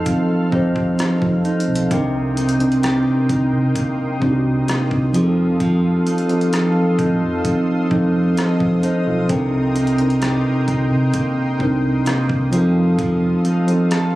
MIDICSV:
0, 0, Header, 1, 7, 480
1, 0, Start_track
1, 0, Tempo, 923077
1, 993, Time_signature, 4, 2, 24, 8
1, 7360, End_track
2, 0, Start_track
2, 0, Title_t, "Analog synth pad"
2, 0, Program_c, 0, 89
2, 0, Note_on_c, 0, 69, 80
2, 0, Note_on_c, 0, 77, 72
2, 0, Note_on_c, 0, 84, 70
2, 0, Note_on_c, 0, 89, 86
2, 972, Note_off_c, 0, 69, 0
2, 972, Note_off_c, 0, 77, 0
2, 981, Note_off_c, 0, 89, 0
2, 992, Note_on_c, 0, 70, 78
2, 992, Note_on_c, 0, 79, 72
2, 992, Note_on_c, 0, 87, 82
2, 2656, Note_off_c, 0, 70, 0
2, 2656, Note_off_c, 0, 79, 0
2, 2674, Note_on_c, 0, 69, 82
2, 2674, Note_on_c, 0, 77, 73
2, 4813, Note_off_c, 0, 69, 0
2, 4813, Note_off_c, 0, 77, 0
2, 4832, Note_on_c, 0, 70, 80
2, 4832, Note_on_c, 0, 79, 74
2, 6495, Note_off_c, 0, 79, 0
2, 6496, Note_off_c, 0, 70, 0
2, 6512, Note_on_c, 0, 69, 76
2, 6512, Note_on_c, 0, 77, 71
2, 7360, Note_off_c, 0, 69, 0
2, 7360, Note_off_c, 0, 77, 0
2, 7360, Note_off_c, 0, 84, 0
2, 7360, Note_off_c, 0, 87, 0
2, 7360, End_track
3, 0, Start_track
3, 0, Title_t, "Nylon-string guitar"
3, 0, Program_c, 1, 24
3, 0, Note_on_c, 1, 53, 84
3, 0, Note_on_c, 1, 63, 61
3, 0, Note_on_c, 1, 69, 66
3, 34, Note_on_c, 1, 60, 58
3, 271, Note_off_c, 1, 63, 0
3, 273, Note_on_c, 1, 63, 58
3, 511, Note_off_c, 1, 60, 0
3, 513, Note_on_c, 1, 60, 55
3, 751, Note_off_c, 1, 63, 0
3, 753, Note_on_c, 1, 63, 58
3, 993, Note_off_c, 1, 53, 0
3, 995, Note_on_c, 1, 48, 83
3, 1041, Note_off_c, 1, 69, 0
3, 1233, Note_off_c, 1, 63, 0
3, 1235, Note_on_c, 1, 63, 57
3, 1474, Note_on_c, 1, 67, 69
3, 1713, Note_off_c, 1, 63, 0
3, 1715, Note_on_c, 1, 63, 59
3, 1952, Note_off_c, 1, 60, 0
3, 1954, Note_on_c, 1, 58, 60
3, 2192, Note_off_c, 1, 63, 0
3, 2195, Note_on_c, 1, 63, 60
3, 2429, Note_off_c, 1, 58, 0
3, 2435, Note_on_c, 1, 58, 57
3, 2674, Note_on_c, 1, 53, 81
3, 2721, Note_off_c, 1, 67, 0
3, 2722, Note_off_c, 1, 48, 0
3, 2722, Note_off_c, 1, 58, 0
3, 2908, Note_off_c, 1, 53, 0
3, 2915, Note_on_c, 1, 53, 80
3, 2930, Note_off_c, 1, 63, 0
3, 3155, Note_on_c, 1, 63, 58
3, 3394, Note_on_c, 1, 69, 66
3, 3632, Note_off_c, 1, 63, 0
3, 3634, Note_on_c, 1, 63, 58
3, 3872, Note_on_c, 1, 60, 61
3, 4112, Note_off_c, 1, 63, 0
3, 4114, Note_on_c, 1, 63, 59
3, 4351, Note_off_c, 1, 60, 0
3, 4353, Note_on_c, 1, 60, 58
3, 4592, Note_off_c, 1, 63, 0
3, 4594, Note_on_c, 1, 63, 61
3, 4834, Note_off_c, 1, 53, 0
3, 4834, Note_on_c, 1, 48, 82
3, 4882, Note_off_c, 1, 69, 0
3, 5072, Note_off_c, 1, 63, 0
3, 5074, Note_on_c, 1, 63, 58
3, 5314, Note_on_c, 1, 67, 67
3, 5552, Note_off_c, 1, 63, 0
3, 5555, Note_on_c, 1, 63, 58
3, 5792, Note_off_c, 1, 60, 0
3, 5795, Note_on_c, 1, 58, 60
3, 6032, Note_off_c, 1, 63, 0
3, 6034, Note_on_c, 1, 63, 61
3, 6268, Note_off_c, 1, 58, 0
3, 6274, Note_on_c, 1, 58, 59
3, 6513, Note_on_c, 1, 53, 81
3, 6561, Note_off_c, 1, 48, 0
3, 6561, Note_off_c, 1, 58, 0
3, 6561, Note_off_c, 1, 67, 0
3, 6747, Note_off_c, 1, 53, 0
3, 6753, Note_on_c, 1, 53, 79
3, 6769, Note_off_c, 1, 63, 0
3, 6994, Note_on_c, 1, 63, 58
3, 7234, Note_on_c, 1, 69, 68
3, 7360, Note_off_c, 1, 53, 0
3, 7360, Note_off_c, 1, 63, 0
3, 7360, Note_off_c, 1, 69, 0
3, 7360, End_track
4, 0, Start_track
4, 0, Title_t, "Tine electric piano"
4, 0, Program_c, 2, 4
4, 0, Control_c, 2, 64, 127
4, 0, Note_on_c, 2, 53, 73
4, 0, Note_on_c, 2, 60, 67
4, 0, Note_on_c, 2, 63, 69
4, 0, Note_on_c, 2, 67, 67
4, 0, Note_on_c, 2, 69, 83
4, 54, Note_off_c, 2, 69, 0
4, 265, Note_off_c, 2, 53, 0
4, 265, Note_on_c, 2, 53, 83
4, 271, Note_off_c, 2, 60, 0
4, 271, Note_on_c, 2, 60, 79
4, 277, Note_off_c, 2, 63, 0
4, 277, Note_on_c, 2, 63, 77
4, 283, Note_off_c, 2, 67, 0
4, 283, Note_on_c, 2, 67, 78
4, 289, Note_on_c, 2, 72, 88
4, 795, Note_off_c, 2, 53, 0
4, 797, Note_off_c, 2, 60, 0
4, 800, Note_off_c, 2, 63, 0
4, 803, Note_off_c, 2, 67, 0
4, 806, Note_off_c, 2, 72, 0
4, 985, Note_on_c, 2, 48, 73
4, 991, Note_on_c, 2, 60, 74
4, 997, Note_on_c, 2, 62, 73
4, 1000, Control_c, 2, 64, 0
4, 1003, Note_on_c, 2, 63, 71
4, 1009, Note_on_c, 2, 70, 86
4, 1091, Control_c, 2, 64, 127
4, 1252, Note_off_c, 2, 48, 0
4, 1255, Note_off_c, 2, 60, 0
4, 1258, Note_off_c, 2, 62, 0
4, 1261, Note_off_c, 2, 63, 0
4, 1264, Note_off_c, 2, 70, 0
4, 1345, Note_on_c, 2, 48, 75
4, 1351, Note_on_c, 2, 60, 72
4, 1357, Note_on_c, 2, 62, 69
4, 1363, Note_on_c, 2, 63, 67
4, 1369, Note_on_c, 2, 70, 81
4, 1962, Note_off_c, 2, 48, 0
4, 1965, Note_off_c, 2, 60, 0
4, 1968, Note_off_c, 2, 62, 0
4, 1971, Note_off_c, 2, 63, 0
4, 1974, Note_off_c, 2, 70, 0
4, 2185, Note_on_c, 2, 48, 85
4, 2191, Note_on_c, 2, 60, 79
4, 2197, Note_on_c, 2, 62, 78
4, 2203, Note_on_c, 2, 63, 76
4, 2209, Note_on_c, 2, 66, 75
4, 2235, Note_off_c, 2, 66, 0
4, 2243, Note_on_c, 2, 67, 90
4, 2665, Note_off_c, 2, 60, 0
4, 2665, Note_on_c, 2, 53, 83
4, 2669, Note_off_c, 2, 48, 0
4, 2671, Note_off_c, 2, 63, 0
4, 2672, Note_on_c, 2, 60, 83
4, 2675, Note_off_c, 2, 62, 0
4, 2677, Note_off_c, 2, 67, 0
4, 2677, Note_on_c, 2, 63, 76
4, 2680, Control_c, 2, 64, 0
4, 2684, Note_on_c, 2, 67, 74
4, 2690, Note_on_c, 2, 68, 73
4, 2715, Note_off_c, 2, 68, 0
4, 2724, Note_on_c, 2, 69, 101
4, 2765, Control_c, 2, 64, 127
4, 3149, Note_off_c, 2, 53, 0
4, 3152, Note_off_c, 2, 60, 0
4, 3155, Note_off_c, 2, 63, 0
4, 3158, Note_off_c, 2, 67, 0
4, 3178, Note_off_c, 2, 69, 0
4, 3265, Note_on_c, 2, 53, 72
4, 3271, Note_on_c, 2, 60, 69
4, 3277, Note_on_c, 2, 63, 72
4, 3283, Note_on_c, 2, 67, 69
4, 3289, Note_on_c, 2, 69, 83
4, 3882, Note_off_c, 2, 53, 0
4, 3885, Note_off_c, 2, 60, 0
4, 3888, Note_off_c, 2, 63, 0
4, 3891, Note_off_c, 2, 67, 0
4, 3894, Note_off_c, 2, 69, 0
4, 4106, Note_on_c, 2, 53, 84
4, 4112, Note_on_c, 2, 60, 74
4, 4118, Note_on_c, 2, 63, 79
4, 4124, Note_on_c, 2, 67, 79
4, 4130, Note_on_c, 2, 69, 99
4, 4358, Note_off_c, 2, 67, 0
4, 4358, Note_on_c, 2, 75, 63
4, 4361, Note_off_c, 2, 69, 0
4, 4361, Note_on_c, 2, 72, 52
4, 4583, Note_off_c, 2, 75, 0
4, 4585, Note_off_c, 2, 72, 0
4, 4598, Note_on_c, 2, 72, 73
4, 4601, Note_on_c, 2, 69, 58
4, 4635, Note_off_c, 2, 53, 0
4, 4638, Note_off_c, 2, 60, 0
4, 4641, Note_off_c, 2, 63, 0
4, 4709, Note_off_c, 2, 72, 0
4, 4711, Note_off_c, 2, 69, 0
4, 4718, Note_on_c, 2, 69, 62
4, 4720, Note_on_c, 2, 65, 57
4, 4824, Note_on_c, 2, 48, 80
4, 4831, Note_on_c, 2, 60, 73
4, 4837, Note_on_c, 2, 62, 76
4, 4840, Control_c, 2, 64, 0
4, 4843, Note_on_c, 2, 63, 77
4, 4848, Note_on_c, 2, 70, 92
4, 4922, Control_c, 2, 64, 127
4, 4943, Note_off_c, 2, 69, 0
4, 4945, Note_off_c, 2, 65, 0
4, 5091, Note_off_c, 2, 48, 0
4, 5095, Note_off_c, 2, 60, 0
4, 5098, Note_off_c, 2, 62, 0
4, 5101, Note_off_c, 2, 63, 0
4, 5103, Note_off_c, 2, 70, 0
4, 5186, Note_on_c, 2, 48, 75
4, 5192, Note_on_c, 2, 60, 68
4, 5198, Note_on_c, 2, 62, 65
4, 5204, Note_on_c, 2, 63, 72
4, 5210, Note_on_c, 2, 70, 86
4, 5803, Note_off_c, 2, 48, 0
4, 5806, Note_off_c, 2, 60, 0
4, 5808, Note_off_c, 2, 62, 0
4, 5812, Note_off_c, 2, 63, 0
4, 5815, Note_off_c, 2, 70, 0
4, 6026, Note_on_c, 2, 48, 90
4, 6031, Note_on_c, 2, 60, 80
4, 6037, Note_on_c, 2, 62, 76
4, 6043, Note_on_c, 2, 63, 76
4, 6049, Note_on_c, 2, 70, 97
4, 6505, Note_off_c, 2, 60, 0
4, 6505, Note_on_c, 2, 53, 91
4, 6509, Note_off_c, 2, 48, 0
4, 6511, Note_off_c, 2, 63, 0
4, 6511, Note_on_c, 2, 60, 80
4, 6515, Note_off_c, 2, 62, 0
4, 6517, Note_on_c, 2, 63, 78
4, 6519, Control_c, 2, 64, 0
4, 6521, Note_off_c, 2, 70, 0
4, 6523, Note_on_c, 2, 67, 80
4, 6529, Note_on_c, 2, 69, 97
4, 6617, Control_c, 2, 64, 127
4, 6989, Note_off_c, 2, 53, 0
4, 6992, Note_off_c, 2, 60, 0
4, 6995, Note_off_c, 2, 63, 0
4, 6998, Note_off_c, 2, 67, 0
4, 7001, Note_off_c, 2, 69, 0
4, 7105, Note_on_c, 2, 53, 75
4, 7110, Note_on_c, 2, 60, 73
4, 7116, Note_on_c, 2, 63, 70
4, 7122, Note_on_c, 2, 67, 70
4, 7129, Note_on_c, 2, 69, 78
4, 7360, Note_off_c, 2, 53, 0
4, 7360, Note_off_c, 2, 60, 0
4, 7360, Note_off_c, 2, 63, 0
4, 7360, Note_off_c, 2, 67, 0
4, 7360, Note_off_c, 2, 69, 0
4, 7360, End_track
5, 0, Start_track
5, 0, Title_t, "Fingered electric bass"
5, 0, Program_c, 3, 33
5, 272, Note_on_c, 3, 29, 86
5, 476, Note_off_c, 3, 29, 0
5, 633, Note_on_c, 3, 29, 86
5, 735, Note_off_c, 3, 29, 0
5, 873, Note_on_c, 3, 35, 83
5, 975, Note_off_c, 3, 35, 0
5, 993, Note_on_c, 3, 36, 94
5, 1572, Note_off_c, 3, 36, 0
5, 1713, Note_on_c, 3, 36, 84
5, 1815, Note_off_c, 3, 36, 0
5, 1834, Note_on_c, 3, 48, 86
5, 1935, Note_off_c, 3, 48, 0
5, 2193, Note_on_c, 3, 36, 85
5, 2396, Note_off_c, 3, 36, 0
5, 2554, Note_on_c, 3, 36, 75
5, 2655, Note_off_c, 3, 36, 0
5, 2675, Note_on_c, 3, 29, 98
5, 3081, Note_off_c, 3, 29, 0
5, 3633, Note_on_c, 3, 33, 87
5, 3735, Note_off_c, 3, 33, 0
5, 3754, Note_on_c, 3, 41, 88
5, 3855, Note_off_c, 3, 41, 0
5, 4113, Note_on_c, 3, 29, 90
5, 4317, Note_off_c, 3, 29, 0
5, 4474, Note_on_c, 3, 29, 87
5, 4575, Note_off_c, 3, 29, 0
5, 4714, Note_on_c, 3, 35, 92
5, 4815, Note_off_c, 3, 35, 0
5, 4834, Note_on_c, 3, 36, 108
5, 5413, Note_off_c, 3, 36, 0
5, 5553, Note_on_c, 3, 36, 80
5, 5654, Note_off_c, 3, 36, 0
5, 5673, Note_on_c, 3, 48, 79
5, 5775, Note_off_c, 3, 48, 0
5, 6032, Note_on_c, 3, 36, 97
5, 6236, Note_off_c, 3, 36, 0
5, 6394, Note_on_c, 3, 36, 87
5, 6512, Note_on_c, 3, 29, 98
5, 6520, Note_off_c, 3, 36, 0
5, 6919, Note_off_c, 3, 29, 0
5, 7360, End_track
6, 0, Start_track
6, 0, Title_t, "Muted fingered electric bass strokes"
6, 154, Note_on_c, 9, 29, 46
6, 206, Note_off_c, 9, 29, 0
6, 513, Note_on_c, 9, 29, 47
6, 565, Note_off_c, 9, 29, 0
6, 2073, Note_on_c, 9, 29, 46
6, 2125, Note_off_c, 9, 29, 0
6, 2434, Note_on_c, 9, 29, 44
6, 2486, Note_off_c, 9, 29, 0
6, 3995, Note_on_c, 9, 29, 44
6, 4047, Note_off_c, 9, 29, 0
6, 4354, Note_on_c, 9, 29, 47
6, 4406, Note_off_c, 9, 29, 0
6, 5913, Note_on_c, 9, 29, 46
6, 5965, Note_off_c, 9, 29, 0
6, 6272, Note_on_c, 9, 29, 47
6, 6324, Note_off_c, 9, 29, 0
6, 7360, End_track
7, 0, Start_track
7, 0, Title_t, "Drums"
7, 31, Note_on_c, 9, 42, 69
7, 32, Note_on_c, 9, 36, 88
7, 83, Note_off_c, 9, 42, 0
7, 84, Note_off_c, 9, 36, 0
7, 272, Note_on_c, 9, 36, 77
7, 324, Note_off_c, 9, 36, 0
7, 394, Note_on_c, 9, 36, 91
7, 446, Note_off_c, 9, 36, 0
7, 514, Note_on_c, 9, 42, 65
7, 520, Note_on_c, 9, 37, 106
7, 566, Note_off_c, 9, 42, 0
7, 572, Note_off_c, 9, 37, 0
7, 633, Note_on_c, 9, 36, 81
7, 685, Note_off_c, 9, 36, 0
7, 754, Note_on_c, 9, 42, 38
7, 806, Note_off_c, 9, 42, 0
7, 833, Note_on_c, 9, 42, 48
7, 885, Note_off_c, 9, 42, 0
7, 913, Note_on_c, 9, 42, 62
7, 965, Note_off_c, 9, 42, 0
7, 993, Note_on_c, 9, 36, 101
7, 993, Note_on_c, 9, 42, 64
7, 1045, Note_off_c, 9, 36, 0
7, 1045, Note_off_c, 9, 42, 0
7, 1233, Note_on_c, 9, 42, 61
7, 1285, Note_off_c, 9, 42, 0
7, 1293, Note_on_c, 9, 42, 49
7, 1345, Note_off_c, 9, 42, 0
7, 1354, Note_on_c, 9, 42, 41
7, 1406, Note_off_c, 9, 42, 0
7, 1413, Note_on_c, 9, 42, 33
7, 1465, Note_off_c, 9, 42, 0
7, 1473, Note_on_c, 9, 42, 70
7, 1478, Note_on_c, 9, 37, 114
7, 1525, Note_off_c, 9, 42, 0
7, 1530, Note_off_c, 9, 37, 0
7, 1713, Note_on_c, 9, 36, 86
7, 1713, Note_on_c, 9, 42, 55
7, 1765, Note_off_c, 9, 36, 0
7, 1765, Note_off_c, 9, 42, 0
7, 1952, Note_on_c, 9, 36, 86
7, 1953, Note_on_c, 9, 42, 71
7, 2004, Note_off_c, 9, 36, 0
7, 2005, Note_off_c, 9, 42, 0
7, 2193, Note_on_c, 9, 36, 83
7, 2245, Note_off_c, 9, 36, 0
7, 2435, Note_on_c, 9, 42, 67
7, 2441, Note_on_c, 9, 37, 101
7, 2487, Note_off_c, 9, 42, 0
7, 2493, Note_off_c, 9, 37, 0
7, 2554, Note_on_c, 9, 36, 87
7, 2606, Note_off_c, 9, 36, 0
7, 2675, Note_on_c, 9, 42, 57
7, 2727, Note_off_c, 9, 42, 0
7, 2913, Note_on_c, 9, 42, 65
7, 2914, Note_on_c, 9, 36, 104
7, 2965, Note_off_c, 9, 42, 0
7, 2966, Note_off_c, 9, 36, 0
7, 3154, Note_on_c, 9, 42, 59
7, 3206, Note_off_c, 9, 42, 0
7, 3214, Note_on_c, 9, 42, 50
7, 3266, Note_off_c, 9, 42, 0
7, 3273, Note_on_c, 9, 42, 42
7, 3325, Note_off_c, 9, 42, 0
7, 3335, Note_on_c, 9, 42, 32
7, 3387, Note_off_c, 9, 42, 0
7, 3394, Note_on_c, 9, 42, 76
7, 3399, Note_on_c, 9, 37, 115
7, 3446, Note_off_c, 9, 42, 0
7, 3451, Note_off_c, 9, 37, 0
7, 3633, Note_on_c, 9, 36, 84
7, 3634, Note_on_c, 9, 42, 56
7, 3685, Note_off_c, 9, 36, 0
7, 3686, Note_off_c, 9, 42, 0
7, 3872, Note_on_c, 9, 42, 71
7, 3873, Note_on_c, 9, 36, 84
7, 3924, Note_off_c, 9, 42, 0
7, 3925, Note_off_c, 9, 36, 0
7, 4113, Note_on_c, 9, 36, 86
7, 4165, Note_off_c, 9, 36, 0
7, 4355, Note_on_c, 9, 42, 67
7, 4360, Note_on_c, 9, 37, 102
7, 4407, Note_off_c, 9, 42, 0
7, 4412, Note_off_c, 9, 37, 0
7, 4474, Note_on_c, 9, 36, 85
7, 4526, Note_off_c, 9, 36, 0
7, 4593, Note_on_c, 9, 42, 61
7, 4645, Note_off_c, 9, 42, 0
7, 4833, Note_on_c, 9, 36, 104
7, 4833, Note_on_c, 9, 42, 66
7, 4885, Note_off_c, 9, 36, 0
7, 4885, Note_off_c, 9, 42, 0
7, 5073, Note_on_c, 9, 42, 61
7, 5125, Note_off_c, 9, 42, 0
7, 5133, Note_on_c, 9, 42, 50
7, 5185, Note_off_c, 9, 42, 0
7, 5192, Note_on_c, 9, 42, 41
7, 5244, Note_off_c, 9, 42, 0
7, 5253, Note_on_c, 9, 42, 34
7, 5305, Note_off_c, 9, 42, 0
7, 5313, Note_on_c, 9, 42, 74
7, 5317, Note_on_c, 9, 37, 116
7, 5365, Note_off_c, 9, 42, 0
7, 5369, Note_off_c, 9, 37, 0
7, 5553, Note_on_c, 9, 36, 81
7, 5553, Note_on_c, 9, 42, 53
7, 5605, Note_off_c, 9, 36, 0
7, 5605, Note_off_c, 9, 42, 0
7, 5791, Note_on_c, 9, 42, 74
7, 5792, Note_on_c, 9, 36, 90
7, 5843, Note_off_c, 9, 42, 0
7, 5844, Note_off_c, 9, 36, 0
7, 6032, Note_on_c, 9, 36, 80
7, 6084, Note_off_c, 9, 36, 0
7, 6273, Note_on_c, 9, 42, 72
7, 6278, Note_on_c, 9, 37, 96
7, 6325, Note_off_c, 9, 42, 0
7, 6330, Note_off_c, 9, 37, 0
7, 6393, Note_on_c, 9, 36, 82
7, 6445, Note_off_c, 9, 36, 0
7, 6514, Note_on_c, 9, 42, 62
7, 6566, Note_off_c, 9, 42, 0
7, 6753, Note_on_c, 9, 36, 102
7, 6753, Note_on_c, 9, 42, 64
7, 6805, Note_off_c, 9, 36, 0
7, 6805, Note_off_c, 9, 42, 0
7, 6993, Note_on_c, 9, 42, 47
7, 7045, Note_off_c, 9, 42, 0
7, 7114, Note_on_c, 9, 42, 47
7, 7166, Note_off_c, 9, 42, 0
7, 7233, Note_on_c, 9, 42, 71
7, 7237, Note_on_c, 9, 37, 113
7, 7285, Note_off_c, 9, 42, 0
7, 7289, Note_off_c, 9, 37, 0
7, 7360, End_track
0, 0, End_of_file